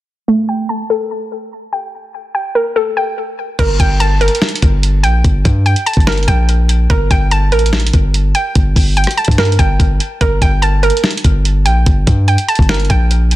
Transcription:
0.28 1.52 A3 medium
0.49 1.71 G5 medium
0.69 1.93 A5 medium
0.90 2.14 A4 medium
1.73 2.33 G5 medium
2.35 2.96 G5 medium
2.55 3.58 A#4 medium
2.76 3.59 A4 medium
2.97 3.59 G5 medium
3.59 3.79 G1 loud
3.59 4.20 A#4 loud
3.59 kick loud
3.59 closed hi-hat medium
3.59 crash loud
3.80 4.29 G1 loud
3.80 5.02 G5 medium
3.80 kick medium
3.80 closed hi-hat medium
4.00 5.24 A5 medium
4.00 closed hi-hat medium
4.21 5.45 A#4 medium
4.21 closed hi-hat soft
4.28 closed hi-hat medium
4.35 closed hi-hat medium
4.42 snare loud
4.42 closed hi-hat medium
4.49 closed hi-hat medium
4.55 closed hi-hat medium
4.62 5.05 G1 loud
4.62 kick medium
4.62 closed hi-hat medium
4.83 closed hi-hat medium
5.03 5.23 A#1 loud
5.03 5.65 G5 medium
5.03 closed hi-hat medium
5.24 5.44 G1 loud
5.24 kick loud
5.24 closed hi-hat medium
5.45 5.75 G2 loud
5.45 kick loud
5.45 closed hi-hat medium
5.66 6.26 G5 medium
5.66 closed hi-hat soft
5.76 closed hi-hat medium
5.86 6.90 A5 medium
5.86 closed hi-hat medium
5.93 6.27 G1 loud
5.93 kick medium
5.93 closed hi-hat medium
6.00 closed hi-hat soft
6.07 6.89 A#4 medium
6.07 snare loud
6.07 closed hi-hat medium
6.12 closed hi-hat medium
6.17 closed hi-hat soft
6.23 closed hi-hat soft
6.28 6.88 A#1 loud
6.28 6.90 G5 medium
6.28 kick medium
6.28 closed hi-hat medium
6.49 closed hi-hat medium
6.69 closed hi-hat medium
6.90 7.10 G1 loud
6.90 7.51 A#4 medium
6.90 kick loud
6.90 closed hi-hat medium
7.11 7.54 G1 loud
7.11 8.34 G5 medium
7.11 kick loud
7.11 closed hi-hat medium
7.31 8.56 A5 loud
7.31 closed hi-hat medium
7.52 7.91 A1 loud
7.52 8.76 A#4 loud
7.52 closed hi-hat soft
7.59 closed hi-hat medium
7.66 closed hi-hat medium
7.73 snare loud
7.73 closed hi-hat medium
7.80 closed hi-hat medium
7.87 closed hi-hat medium
7.93 8.33 G1 loud
7.93 kick medium
7.93 closed hi-hat medium
8.14 closed hi-hat medium
8.35 8.96 G5 medium
8.35 closed hi-hat medium
8.55 8.75 G1 loud
8.55 kick loud
8.55 closed hi-hat medium
8.76 9.06 G1 loud
8.76 kick loud
8.76 open hi-hat medium
8.97 9.58 G5 medium
8.97 closed hi-hat soft
9.04 cross-stick medium
9.04 closed hi-hat medium
9.11 closed hi-hat medium
9.17 10.21 A5 medium
9.17 closed hi-hat soft
9.25 9.58 G2 loud
9.25 kick medium
9.25 closed hi-hat medium
9.31 closed hi-hat medium
9.38 10.20 A#4 loud
9.38 cross-stick medium
9.38 snare loud
9.38 closed hi-hat soft
9.45 closed hi-hat medium
9.52 closed hi-hat medium
9.59 9.79 G1 loud
9.59 10.21 G5 medium
9.59 kick medium
9.59 closed hi-hat medium
9.80 10.00 G1 loud
9.80 kick loud
9.80 closed hi-hat medium
10.00 closed hi-hat medium
10.21 10.41 G1 loud
10.21 10.82 A#4 loud
10.21 kick loud
10.21 closed hi-hat medium
10.42 10.91 G1 loud
10.42 11.64 G5 medium
10.42 kick loud
10.42 closed hi-hat medium
10.62 11.86 A5 medium
10.62 closed hi-hat medium
10.83 12.07 A#4 loud
10.83 closed hi-hat soft
10.90 closed hi-hat medium
10.97 closed hi-hat medium
11.04 snare loud
11.04 closed hi-hat medium
11.11 closed hi-hat medium
11.17 closed hi-hat medium
11.24 11.67 G1 loud
11.24 kick medium
11.24 closed hi-hat medium
11.45 closed hi-hat medium
11.66 11.85 A#1 loud
11.66 12.27 G5 medium
11.66 closed hi-hat medium
11.86 12.06 G1 loud
11.86 kick loud
11.86 closed hi-hat medium
12.07 12.37 G2 loud
12.07 kick medium
12.07 closed hi-hat medium
12.28 12.89 G5 medium
12.28 closed hi-hat soft
12.38 closed hi-hat medium
12.48 13.36 A5 medium
12.48 closed hi-hat medium
12.55 12.89 G1 loud
12.55 kick medium
12.55 closed hi-hat medium
12.62 closed hi-hat soft
12.69 13.36 A#4 medium
12.69 snare loud
12.69 closed hi-hat medium
12.74 closed hi-hat medium
12.80 closed hi-hat soft
12.85 closed hi-hat soft
12.90 13.36 A#1 loud
12.90 13.36 G5 medium
12.90 kick medium
12.90 closed hi-hat medium
13.11 closed hi-hat medium
13.31 closed hi-hat medium

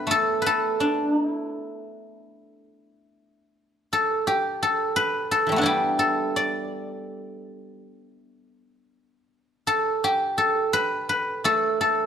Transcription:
0.00 2.32 B3 soft
0.00 0.80 D4 soft
0.00 0.80 E4 medium
0.00 1.68 G4 medium
0.00 0.10 A4 medium
0.00 0.41 B4 medium
0.07 2.19 A3 medium
0.11 0.46 A4 medium
0.42 2.47 B4 medium
0.46 2.66 A4 medium
0.80 1.12 D4 medium
1.12 1.31 D#4 medium
1.31 3.41 E4 medium
3.93 4.62 A4 medium
4.27 5.65 G4 medium
4.63 5.31 A4 medium
4.96 7.01 B4 medium
5.31 5.99 A4 medium
5.47 5.64 E3 soft
5.47 5.63 G3 soft
5.52 5.69 A3 soft
5.56 8.67 B3 medium
5.56 8.38 D4 medium
5.61 7.83 G3 soft
5.61 8.23 E4 medium
5.66 8.01 G4 medium
5.99 8.19 A4 medium
6.36 8.21 D5 medium
9.67 10.37 A4 medium
10.04 12.06 G4 medium
10.38 11.45 A4 medium
10.73 11.09 B4 medium
11.09 12.06 B4 medium
11.44 12.06 A3 soft
11.44 11.80 A4 medium
11.81 12.06 A4 medium

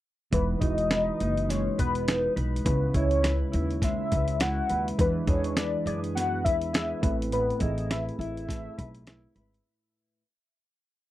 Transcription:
0.31 0.56 E1 loud
0.31 2.65 E3 medium
0.31 0.58 G#3 medium
0.31 0.58 D#4 medium
0.31 0.59 E4 medium
0.31 0.60 B4 medium
0.31 0.59 B4 medium
0.31 kick loud
0.31 closed hi-hat medium
0.60 1.08 E1 medium
0.60 1.62 G#3 medium
0.60 1.62 D#4 medium
0.60 1.20 D#4 medium
0.60 1.63 E4 medium
0.60 1.63 F#4 medium
0.60 1.52 D#5 loud
0.60 kick medium
0.60 closed hi-hat medium
0.78 closed hi-hat soft
0.91 1.78 B4 medium
0.91 snare loud
0.91 closed hi-hat medium
1.20 1.67 F#1 medium
1.20 2.07 D#4 medium
1.20 closed hi-hat medium
1.37 closed hi-hat soft
1.49 3.82 G#3 medium
1.49 1.79 C#5 loud
1.49 snare soft
1.49 closed hi-hat medium
1.78 2.26 E1 medium
1.78 2.36 B4 medium
1.78 2.33 B4 medium
1.78 kick medium
1.78 closed hi-hat medium
1.95 closed hi-hat soft
2.08 2.73 D#4 medium
2.08 snare loud
2.08 closed hi-hat medium
2.36 2.60 B1 medium
2.36 3.22 B4 medium
2.36 closed hi-hat medium
2.56 closed hi-hat medium
2.64 2.90 C#2 loud
2.64 4.98 C#3 medium
2.64 2.91 G#3 medium
2.64 2.91 C#4 medium
2.64 2.92 E4 medium
2.64 2.96 B4 loud
2.64 2.92 B4 medium
2.64 kick loud
2.64 closed hi-hat medium
2.94 3.42 C#2 medium
2.94 3.96 G#3 medium
2.94 3.96 C#4 medium
2.94 3.51 E4 medium
2.94 3.97 E4 medium
2.94 3.53 C#5 loud
2.94 3.97 C#5 medium
2.94 kick medium
2.94 closed hi-hat medium
3.11 closed hi-hat soft
3.23 4.11 B4 medium
3.23 snare loud
3.23 closed hi-hat medium
3.52 4.00 D#2 medium
3.52 4.40 E4 medium
3.52 closed hi-hat medium
3.70 closed hi-hat soft
3.82 5.06 G#3 medium
3.82 4.43 E5 loud
3.82 kick medium
3.82 snare soft
3.82 closed hi-hat medium
4.12 4.59 C#2 medium
4.12 4.69 B4 medium
4.12 kick medium
4.12 closed hi-hat medium
4.28 closed hi-hat medium
4.40 5.27 E4 medium
4.40 4.88 F#5 loud
4.40 snare loud
4.40 closed hi-hat medium
4.69 4.94 D#2 medium
4.69 5.57 B4 medium
4.69 closed hi-hat medium
4.88 closed hi-hat medium
4.98 5.23 E2 loud
4.98 8.49 E3 medium
4.98 5.24 G#3 medium
4.98 5.25 D4 medium
4.98 5.25 E4 medium
4.98 5.25 B4 medium
4.98 5.27 B4 medium
4.98 kick loud
4.98 closed hi-hat medium
5.27 5.74 E2 loud
5.27 6.28 G#3 medium
5.27 6.29 D4 medium
5.27 6.29 E4 medium
5.27 5.86 G#4 medium
5.27 6.30 B4 medium
5.27 5.59 C#5 medium
5.27 kick medium
5.27 closed hi-hat medium
5.44 closed hi-hat medium
5.57 6.45 B4 medium
5.57 5.86 D5 medium
5.57 snare loud
5.57 closed hi-hat medium
5.86 6.46 F#2 medium
5.86 6.72 G#4 medium
5.86 6.00 D5 medium
5.86 closed hi-hat medium
6.04 closed hi-hat soft
6.15 7.35 B3 medium
6.15 6.46 F#5 loud
6.15 snare soft
6.15 closed hi-hat medium
6.44 6.92 E2 medium
6.44 7.35 B4 medium
6.44 6.72 E5 medium
6.44 kick medium
6.44 closed hi-hat medium
6.62 closed hi-hat soft
6.73 7.10 G#4 medium
6.73 7.17 E5 medium
6.73 snare loud
6.73 closed hi-hat medium
7.01 7.50 A1 medium
7.01 7.32 A2 medium
7.01 7.53 A3 medium
7.01 7.54 C4 medium
7.01 7.54 E4 medium
7.01 7.55 B4 medium
7.01 kick loud
7.01 closed hi-hat medium
7.22 closed hi-hat medium
7.32 10.22 A2 medium
7.32 7.62 B4 medium
7.32 closed hi-hat medium
7.50 closed hi-hat soft
7.59 8.08 A1 medium
7.59 8.61 A3 medium
7.59 8.62 C4 medium
7.59 8.19 E4 medium
7.59 8.62 E4 medium
7.59 8.63 G#4 medium
7.59 7.90 D#5 medium
7.59 kick medium
7.59 closed hi-hat medium
7.78 closed hi-hat soft
7.90 8.77 B4 medium
7.90 8.04 E5 medium
7.90 snare loud
7.90 closed hi-hat medium
8.09 closed hi-hat soft
8.19 8.66 A1 medium
8.19 9.06 E4 medium
8.19 9.32 E5 loud
8.19 closed hi-hat medium
8.37 closed hi-hat soft
8.49 10.22 A3 medium
8.49 kick medium
8.49 snare soft
8.49 closed hi-hat loud
8.78 9.25 B1 medium
8.78 9.35 B4 medium
8.78 kick medium
8.78 closed hi-hat medium
8.95 closed hi-hat soft
9.07 10.22 E4 medium
9.07 snare loud
9.07 closed hi-hat medium
9.36 9.59 G#1 medium
9.36 10.22 B4 medium
9.36 closed hi-hat medium
9.54 closed hi-hat medium

